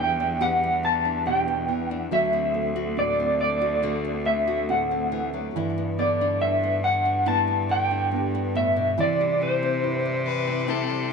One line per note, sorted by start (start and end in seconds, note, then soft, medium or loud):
0.00 0.39 E2 medium
0.00 2.14 E2 medium
0.00 0.82 E3 soft
0.00 2.12 E3 medium
0.00 0.62 G3 medium
0.00 0.39 B3 medium
0.00 0.20 D4 medium
0.00 1.25 D4 medium
0.00 0.40 G4 medium
0.00 0.39 G5 medium
0.20 1.05 D4 medium
0.41 2.11 E2 medium
0.41 1.25 B3 medium
0.41 2.06 G4 medium
0.41 0.84 F#5 loud
0.63 1.47 G3 medium
0.83 1.67 E3 medium
0.83 1.24 A5 medium
1.05 1.91 D4 soft
1.26 1.69 B2 medium
1.26 1.67 B3 medium
1.26 2.20 D4 medium
1.26 2.21 G4 medium
1.26 1.87 G5 medium
1.48 2.12 G3 medium
1.68 2.06 E3 medium
1.68 2.20 B3 medium
1.87 2.13 F#5 medium
1.91 2.33 D4 soft
2.11 5.57 D2 medium
2.11 3.82 D3 medium
2.11 5.55 F#3 medium
2.11 2.75 F#4 medium
2.11 2.94 E5 medium
2.33 3.18 C4 medium
2.54 3.39 A3 medium
2.54 3.81 A3 medium
2.76 3.60 F#4 medium
2.97 3.82 A2 soft
2.97 4.68 C4 medium
2.97 3.40 D5 medium
3.20 4.03 C4 medium
3.40 4.24 A3 soft
3.40 4.26 D5 medium
3.62 3.82 F#4 medium
3.82 5.11 D3 medium
3.82 4.67 A3 medium
3.82 4.46 F#4 medium
4.05 4.90 C4 soft
4.25 5.50 A3 medium
4.25 4.70 E5 medium
4.48 5.50 F#4 medium
4.68 5.55 A2 medium
4.68 5.11 A3 medium
4.68 5.64 C4 medium
4.68 5.64 F#4 medium
4.68 5.30 F#5 medium
4.91 5.50 C4 soft
5.12 5.33 E3 medium
5.12 5.64 A3 medium
5.34 5.55 F#3 medium
5.55 9.00 G2 medium
5.55 6.40 G2 medium
5.55 8.96 E3 medium
5.55 7.26 E4 medium
5.78 6.63 B3 medium
5.98 6.82 D3 medium
5.98 7.25 B3 medium
5.98 6.39 D5 medium
6.21 7.04 D4 medium
6.41 7.24 G2 soft
6.41 8.12 D4 medium
6.41 6.84 E5 medium
6.63 7.46 B3 soft
6.84 7.68 D3 soft
6.84 7.27 F#5 loud
7.05 7.90 D4 soft
7.26 8.10 G2 medium
7.26 8.11 B3 medium
7.26 8.98 E4 medium
7.26 7.67 A5 loud
7.48 8.33 B3 soft
7.69 8.97 D3 medium
7.69 8.56 G5 medium
7.91 8.93 D4 soft
8.12 8.92 G2 medium
8.12 8.54 B3 medium
8.12 9.07 D4 medium
8.12 9.07 G4 medium
8.35 8.93 B3 soft
8.55 8.76 A2 medium
8.55 9.06 B3 medium
8.55 9.00 E5 medium
8.76 8.97 B2 medium
8.98 9.40 C3 medium
8.98 11.13 C3 medium
8.98 11.13 E3 medium
8.98 10.68 E4 medium
8.98 9.42 D5 medium
9.21 10.05 G3 medium
9.41 10.26 E3 medium
9.41 10.23 C5 medium
9.63 10.47 C4 medium
9.83 10.69 G2 medium
9.83 11.13 E4 medium
10.06 10.90 G3 medium
10.26 11.10 E3 medium
10.26 10.71 B4 loud
10.47 11.13 C4 medium
10.68 11.11 C3 medium
10.68 11.13 E4 medium
10.68 11.11 A4 medium
10.90 11.13 G3 medium